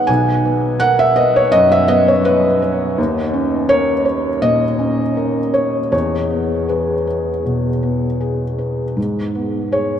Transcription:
0.00 0.11 D#3 medium
0.00 0.11 B3 medium
0.00 0.10 G#4 medium
0.00 0.10 B4 medium
0.00 0.10 D#5 medium
0.00 0.11 F#5 loud
0.07 1.49 B1 medium
0.07 0.76 G#5 medium
0.45 1.03 B3 medium
0.80 1.39 A#4 medium
0.80 0.97 F#5 loud
0.99 1.16 E5 loud
1.16 1.74 B4 medium
1.16 1.33 D#5 loud
1.36 1.52 C#5 medium
1.52 2.10 F#2 medium
1.52 1.69 D#5 loud
1.72 1.88 E5 loud
1.88 2.47 B3 medium
1.88 2.05 D#5 loud
2.08 2.24 C#5 medium
2.25 2.61 B4 medium
2.62 2.98 B4 medium
2.98 4.39 D#2 medium
3.34 3.91 C#4 medium
3.69 4.28 A#4 medium
3.69 4.04 C#5 loud
4.05 4.64 C#5 medium
4.42 5.01 A#2 medium
4.42 5.50 D#5 loud
4.79 5.39 C#4 soft
5.17 5.77 A#4 soft
5.54 5.90 C#5 medium
5.92 7.41 E2 medium
5.92 6.65 C#5 medium
6.30 6.92 B3 soft
6.68 7.30 G#4 soft
6.68 7.05 B4 medium
7.07 7.67 B4 soft
7.46 8.06 B2 soft
7.83 8.44 B3 soft
8.21 8.82 G#4 soft
8.58 8.97 B4 soft
8.97 10.00 G#2 medium
9.35 9.94 B3 soft
9.72 10.00 G#4 soft
9.72 10.00 C#5 medium

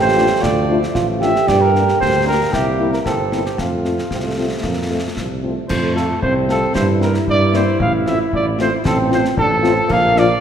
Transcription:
0.00 0.34 A1 medium
0.00 1.45 F3 medium
0.00 1.44 A3 medium
0.00 0.43 G4 loud
0.00 0.43 C5 medium
0.16 0.27 A3 medium
0.16 0.26 D4 medium
0.16 0.26 F4 medium
0.42 0.86 D2 medium
0.42 0.69 F4 medium
0.42 0.95 D5 loud
0.42 concert bass drum medium
0.42 snare medium
0.69 0.79 A3 medium
0.69 0.79 D4 medium
0.69 0.82 E4 medium
0.69 0.79 F4 medium
0.83 snare medium
0.94 1.39 A1 medium
0.94 1.06 F4 medium
0.94 concert bass drum medium
0.94 snare medium
1.20 1.32 A3 medium
1.20 1.32 D4 medium
1.20 1.31 F4 medium
1.20 2.49 G4 medium
1.20 1.49 E5 loud
1.20 snare medium
1.36 snare soft
1.47 1.92 G2 medium
1.47 2.50 D3 medium
1.47 3.41 A#3 medium
1.47 1.62 D5 loud
1.47 concert bass drum medium
1.47 snare medium
1.47 crash soft
1.61 2.00 A#4 medium
1.74 1.84 A#3 medium
1.74 1.84 D4 soft
1.74 1.84 G4 medium
1.74 snare soft
1.88 snare soft
2.00 2.44 D2 medium
2.00 2.25 C5 medium
2.00 concert bass drum medium
2.00 snare medium
2.26 2.36 A#3 medium
2.26 2.36 D4 medium
2.26 2.36 G4 medium
2.26 2.54 A#4 medium
2.52 2.97 C2 medium
2.52 3.41 E3 medium
2.52 3.02 E4 medium
2.52 2.92 G4 medium
2.52 concert bass drum medium
2.52 snare medium
2.79 2.88 A#3 soft
2.79 2.88 C4 soft
2.79 2.89 E4 soft
2.93 2.99 A#4 medium
2.93 snare soft
3.05 3.49 G1 medium
3.05 3.61 C4 medium
3.05 3.42 A4 medium
3.05 concert bass drum medium
3.05 snare medium
3.32 3.42 A#3 soft
3.32 3.42 C4 soft
3.32 3.42 E4 soft
3.32 snare medium
3.45 3.58 G4 medium
3.45 snare soft
3.58 4.02 F2 medium
3.58 5.39 F3 soft
3.58 4.06 A3 medium
3.58 5.39 A3 medium
3.58 5.13 F4 medium
3.58 concert bass drum medium
3.58 snare medium
3.84 3.94 A3 soft
3.84 3.94 C4 soft
3.84 3.94 F4 soft
3.84 snare soft
3.98 snare soft
4.11 4.55 C2 soft
4.11 4.17 C4 medium
4.11 concert bass drum medium
4.11 snare medium
4.25 4.65 A3 medium
4.37 4.47 A3 soft
4.37 4.47 C4 soft
4.37 4.47 F4 soft
4.63 5.08 F2 medium
4.63 4.90 A#3 medium
4.63 concert bass drum medium
4.63 snare medium
4.90 5.00 A3 soft
4.90 5.03 A3 medium
4.90 5.00 C4 soft
4.90 5.00 F4 soft
5.17 5.56 C2 medium
5.17 5.29 F3 medium
5.17 concert bass drum medium
5.17 snare medium
5.43 5.53 A3 soft
5.43 5.68 A3 soft
5.43 5.53 C4 soft
5.43 5.53 F4 soft
5.69 6.13 F2 medium
5.69 6.18 A3 medium
5.69 5.93 C5 medium
5.69 concert bass drum medium
5.69 crash medium
5.96 6.06 A3 medium
5.96 6.06 C4 medium
5.96 6.06 F4 medium
5.96 6.20 A4 medium
5.96 snare soft
6.22 6.66 C2 medium
6.22 6.75 C4 medium
6.22 6.34 C5 loud
6.22 concert bass drum medium
6.47 6.57 A3 medium
6.47 6.57 C4 medium
6.47 6.58 F4 medium
6.47 6.74 A4 loud
6.47 snare medium
6.75 7.19 G2 medium
6.75 8.86 E4 medium
6.75 6.87 C5 medium
6.75 concert bass drum medium
6.75 snare medium
7.00 7.10 A#3 medium
7.00 7.10 C4 medium
7.00 7.10 E4 medium
7.00 7.14 A#4 medium
7.00 snare medium
7.14 snare medium
7.27 7.71 G2 medium
7.27 7.58 D5 loud
7.27 concert bass drum medium
7.54 7.63 A#3 medium
7.54 7.63 C4 medium
7.54 7.63 E4 medium
7.54 7.80 C5 loud
7.54 snare medium
7.79 8.24 A1 medium
7.79 7.92 F5 loud
7.79 concert bass drum loud
8.06 8.16 A3 medium
8.06 8.16 C4 medium
8.06 8.16 F4 medium
8.06 8.19 E5 medium
8.06 snare soft
8.33 8.76 A1 medium
8.33 8.46 D5 loud
8.33 concert bass drum medium
8.59 8.68 A3 medium
8.59 8.68 C4 medium
8.59 8.68 F4 medium
8.59 8.73 C5 medium
8.59 snare medium
8.85 9.29 A1 medium
8.85 9.34 C4 medium
8.85 8.98 A4 loud
8.85 concert bass drum medium
8.85 snare medium
9.10 9.20 A3 medium
9.10 9.20 C4 medium
9.10 9.20 F4 medium
9.10 9.25 C5 medium
9.10 snare medium
9.25 snare medium
9.37 9.81 A1 medium
9.37 9.49 D4 medium
9.37 9.93 A4 loud
9.37 concert bass drum medium
9.62 9.72 A3 medium
9.62 9.74 C4 medium
9.62 9.73 C4 medium
9.62 9.72 F4 medium
9.62 snare medium
9.88 10.34 A#1 medium
9.88 10.38 A#3 medium
9.88 10.20 F5 loud
9.88 concert bass drum medium
9.88 crash soft
10.16 10.25 F3 medium
10.16 10.25 D4 medium
10.16 10.26 F4 medium
10.16 10.40 D5 loud
10.16 snare medium

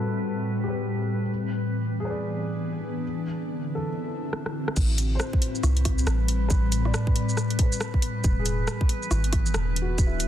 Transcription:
0.00 1.29 A2 medium
0.00 1.29 G3 medium
0.00 1.29 C4 medium
0.00 0.99 F#4 medium
0.00 1.30 A4 medium
0.00 0.67 B4 soft
0.00 1.99 B4 medium
0.00 3.89 B4 medium
0.64 1.46 G4 medium
0.69 1.49 B4 soft
1.28 3.02 E3 medium
1.50 3.03 B3 medium
1.59 3.03 G#4 medium
1.70 3.73 D4 medium
2.00 3.20 G#4 medium
2.05 3.22 B4 medium
2.10 3.25 D5 soft
3.03 4.77 D3 medium
3.15 8.24 C4 medium
3.15 5.71 E4 medium
3.75 3.88 A4 soft
3.82 5.72 F#4 medium
4.33 cross-stick medium
4.46 cross-stick medium
4.68 cross-stick medium
4.75 5.19 A1 loud
4.75 8.24 A2 medium
4.75 10.28 B4 medium
4.75 kick loud
4.75 crash loud
4.75 shaker medium
4.92 8.24 G3 medium
4.98 open hi-hat medium
4.98 shaker medium
5.15 6.41 C5 medium
5.20 cross-stick loud
5.20 shaker medium
5.33 kick loud
5.42 open hi-hat medium
5.55 8.95 B5 medium
5.55 shaker soft
5.63 6.06 C2 medium
5.63 cross-stick medium
5.63 shaker medium
5.77 open hi-hat soft
5.85 kick loud
5.85 cross-stick medium
5.85 open hi-hat medium
5.98 shaker medium
6.07 6.49 A1 medium
6.07 cross-stick loud
6.07 shaker medium
6.28 open hi-hat medium
6.48 6.93 A1 loud
6.48 7.60 B4 medium
6.48 kick loud
6.48 shaker medium
6.72 open hi-hat medium
6.72 shaker medium
6.85 8.12 D5 medium
6.85 cross-stick soft
6.94 cross-stick loud
6.94 shaker medium
7.07 kick loud
7.16 open hi-hat medium
7.29 shaker soft
7.37 cross-stick medium
7.37 shaker medium
7.50 open hi-hat soft
7.59 8.42 B4 medium
7.59 kick loud
7.59 open hi-hat medium
7.72 shaker medium
7.81 cross-stick loud
7.81 shaker medium
7.94 kick medium
8.02 open hi-hat medium
8.24 8.67 E1 loud
8.24 9.98 E3 medium
8.24 kick loud
8.24 shaker medium
8.31 9.98 B3 medium
8.39 9.65 G#4 medium
8.46 open hi-hat medium
8.46 shaker medium
8.68 cross-stick loud
8.68 shaker medium
8.81 kick loud
8.87 10.28 D4 medium
8.87 open hi-hat medium
8.98 9.98 G#4 medium
9.03 shaker soft
9.11 9.54 G#1 medium
9.11 cross-stick medium
9.11 shaker medium
9.24 open hi-hat soft
9.33 kick loud
9.33 cross-stick medium
9.33 open hi-hat medium
9.46 shaker medium
9.54 9.97 E1 medium
9.54 cross-stick loud
9.54 shaker medium
9.76 open hi-hat medium
9.82 10.17 F#4 medium
9.98 10.28 D1 loud
9.98 10.28 D3 medium
9.98 kick loud
9.98 shaker medium
10.07 10.28 E4 medium
10.15 10.28 C3 medium
10.19 10.28 E4 medium
10.19 10.28 F#4 medium
10.19 open hi-hat medium
10.19 shaker medium

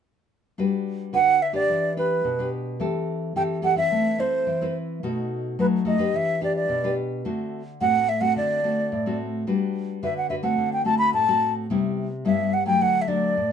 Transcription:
0.58 1.11 G3 medium
0.58 1.09 D4 medium
0.58 1.09 F#4 medium
0.58 1.10 B4 medium
1.13 1.66 D3 medium
1.13 1.39 D4 medium
1.13 1.40 F#4 medium
1.13 1.40 B4 medium
1.13 1.44 F#5 loud
1.42 1.55 E5 medium
1.53 1.91 D4 medium
1.53 1.92 G4 medium
1.53 1.92 B4 medium
1.53 1.94 D5 medium
1.69 2.22 E3 medium
1.97 2.34 D4 soft
1.97 2.34 G4 medium
1.97 2.34 B4 medium
1.97 2.49 B4 medium
2.24 2.78 B2 medium
2.39 2.76 D4 medium
2.39 2.77 G4 medium
2.39 2.77 B4 medium
2.80 3.33 E3 medium
2.80 3.31 C4 medium
2.80 3.32 G4 medium
2.80 3.32 A4 medium
3.36 3.89 E3 medium
3.36 3.59 C4 soft
3.36 3.60 G4 medium
3.36 3.60 A4 medium
3.36 3.43 G5 medium
3.62 3.72 C4 medium
3.62 3.73 G4 medium
3.62 3.73 A4 medium
3.62 3.77 F#5 medium
3.76 4.14 C4 medium
3.76 4.14 E4 medium
3.76 4.15 B4 medium
3.76 4.21 E5 medium
3.92 4.45 A3 medium
4.19 4.56 C4 medium
4.19 4.56 E4 medium
4.19 4.75 C5 medium
4.47 5.00 E3 medium
4.61 4.99 C4 medium
4.61 4.99 E4 medium
4.61 4.99 B4 medium
5.03 5.56 B2 medium
5.03 5.54 A3 medium
5.03 5.55 D#4 soft
5.03 5.55 F#4 medium
5.59 6.12 F#3 medium
5.59 5.82 A3 medium
5.59 5.82 D#4 medium
5.59 5.83 F#4 medium
5.59 5.66 B4 medium
5.85 5.95 A3 medium
5.85 5.96 D#4 soft
5.85 5.96 F#4 medium
5.85 6.18 D#5 medium
5.98 6.37 D4 medium
5.98 6.37 G4 medium
5.98 6.37 B4 medium
6.14 6.67 E3 medium
6.14 6.43 E5 loud
6.41 6.79 D4 medium
6.41 6.79 G4 medium
6.41 6.79 B4 medium
6.41 6.55 D5 medium
6.56 6.95 D5 medium
6.69 7.22 B2 medium
6.84 7.21 D4 medium
6.84 7.21 G4 medium
6.84 7.22 B4 medium
7.25 7.78 D3 medium
7.25 7.61 A3 medium
7.25 7.61 C4 soft
7.25 7.61 F#4 medium
7.81 8.34 A2 medium
7.81 8.07 A3 soft
7.81 8.07 C4 soft
7.81 8.07 F#4 medium
7.81 8.10 F#5 medium
8.09 8.23 E5 medium
8.21 8.59 A3 medium
8.21 8.59 C4 medium
8.21 8.59 F#4 medium
8.21 8.36 F#5 medium
8.36 8.89 D3 medium
8.36 9.16 D5 medium
8.63 8.90 A3 medium
8.63 8.90 C4 soft
8.63 8.90 F#4 medium
8.92 9.45 A2 medium
9.06 9.43 A3 medium
9.06 9.44 C4 medium
9.06 9.44 F#4 medium
9.47 10.00 G3 medium
9.47 9.99 D4 medium
9.47 9.99 F#4 medium
9.47 9.99 B4 medium
10.03 10.56 D3 medium
10.03 10.26 D4 medium
10.03 10.27 F#4 soft
10.03 10.27 B4 medium
10.03 10.16 E5 medium
10.18 10.29 F#5 medium
10.30 10.40 D4 medium
10.30 10.40 F#4 medium
10.30 10.40 B4 medium
10.30 10.36 E5 medium
10.43 10.81 A3 medium
10.43 10.81 C4 medium
10.43 10.82 F#4 medium
10.43 10.70 F#5 medium
10.58 11.11 D3 medium
10.73 10.85 G5 medium
10.85 11.23 A3 medium
10.85 11.23 C4 medium
10.85 11.24 F#4 medium
10.85 10.98 A5 medium
10.98 11.12 B5 medium
11.14 11.67 A2 medium
11.14 11.53 A5 medium
11.28 11.66 A3 medium
11.28 11.66 C4 medium
11.28 11.66 F#4 medium
11.70 12.23 C3 medium
11.70 12.06 G3 medium
11.70 12.06 B3 medium
11.70 12.06 E4 medium
12.25 12.78 G2 medium
12.25 12.52 G3 medium
12.25 12.52 B3 medium
12.25 12.52 E4 medium
12.25 12.55 E5 medium
12.54 12.66 F#5 medium
12.66 13.04 F#3 medium
12.66 13.04 A3 medium
12.66 13.04 D4 medium
12.66 12.83 G5 medium
12.81 13.34 D3 medium
12.81 13.03 F#5 medium
13.02 13.10 E5 medium
13.08 13.35 F#3 medium
13.08 13.35 A3 medium
13.08 13.35 D4 medium
13.08 13.52 D5 medium
13.37 13.52 A2 medium

